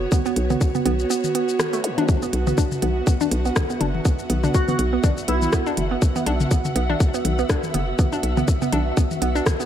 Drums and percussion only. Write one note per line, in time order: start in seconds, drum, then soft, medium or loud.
0.12 kick loud
0.12 high tom soft
0.12 shaker medium
0.26 shaker soft
0.36 closed hi-hat medium
0.50 mid tom medium
0.50 high tom soft
0.50 shaker soft
0.61 kick loud
0.61 shaker medium
0.75 mid tom medium
0.75 shaker soft
0.86 closed hi-hat medium
0.86 high tom soft
1.00 shaker soft
1.10 shaker medium
1.24 high tom soft
1.24 shaker soft
1.35 closed hi-hat medium
1.49 shaker soft
1.59 cross-stick loud
1.59 high tom soft
1.59 shaker medium
1.73 closed hi-hat soft
1.73 shaker soft
1.84 closed hi-hat medium
1.98 closed hi-hat soft
1.98 high tom soft
2.09 kick loud
2.09 high tom soft
2.09 shaker medium
2.22 shaker soft
2.33 closed hi-hat medium
2.47 mid tom loud
2.47 high tom soft
2.47 shaker soft
2.58 kick loud
2.58 shaker medium
2.72 mid tom medium
2.72 shaker soft
2.82 closed hi-hat medium
2.82 high tom soft
3.07 kick loud
3.07 shaker medium
3.21 high tom soft
3.21 shaker soft
3.31 closed hi-hat loud
3.45 shaker soft
3.56 kick loud
3.56 cross-stick loud
3.56 high tom soft
3.56 shaker medium
3.70 shaker soft
3.81 closed hi-hat medium
3.81 mid tom loud
3.95 high tom soft
4.05 kick loud
4.05 shaker medium
4.19 shaker soft
4.30 closed hi-hat medium
4.30 high tom soft
4.44 mid tom loud
4.44 shaker soft
4.54 kick loud
4.54 shaker medium
4.68 mid tom medium
4.68 high tom soft
4.68 shaker soft
4.79 closed hi-hat medium
5.04 kick loud
5.04 high tom soft
5.04 shaker medium
5.17 shaker soft
5.28 closed hi-hat loud
5.42 high tom soft
5.42 shaker soft
5.53 kick loud
5.53 cross-stick loud
5.53 shaker medium
5.67 shaker soft
5.77 closed hi-hat loud
5.77 high tom soft
6.02 kick loud
6.02 shaker medium
6.16 high tom soft
6.16 shaker soft
6.26 closed hi-hat medium
6.40 mid tom loud
6.40 shaker soft
6.51 kick loud
6.51 high tom soft
6.51 shaker medium
6.65 mid tom medium
6.65 shaker soft
6.76 closed hi-hat medium
6.90 high tom soft
7.00 kick loud
7.00 shaker medium
7.14 shaker soft
7.25 closed hi-hat medium
7.25 high tom medium
7.39 shaker soft
7.50 kick loud
7.50 cross-stick loud
7.50 shaker medium
7.63 high tom soft
7.63 shaker soft
7.74 closed hi-hat loud
7.74 mid tom loud
7.99 kick loud
7.99 high tom soft
7.99 shaker medium
8.13 shaker soft
8.23 closed hi-hat medium
8.37 mid tom medium
8.37 high tom soft
8.37 shaker soft
8.48 kick loud
8.48 shaker medium
8.62 mid tom medium
8.62 shaker soft
8.72 closed hi-hat medium
8.72 high tom soft
8.97 kick loud
8.97 shaker medium
9.11 high tom soft
9.11 shaker soft
9.22 closed hi-hat loud
9.36 shaker soft
9.46 kick loud
9.46 cross-stick loud
9.46 high tom soft
9.46 shaker medium
9.60 shaker soft